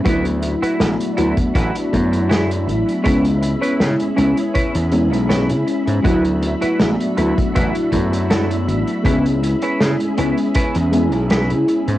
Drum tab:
HH |xxxxxxxxxxxxxxxx|xxxxxxxxxxxxxxxx|xxxxxxxxxxxxxxxx|xxxxxxxxxxxxxxxx|
SD |----o-------o---|----o-------o---|----o-------o---|----o-------o---|
BD |o------oo-o-----|o-------o-------|o------oo-o-----|o-------o-------|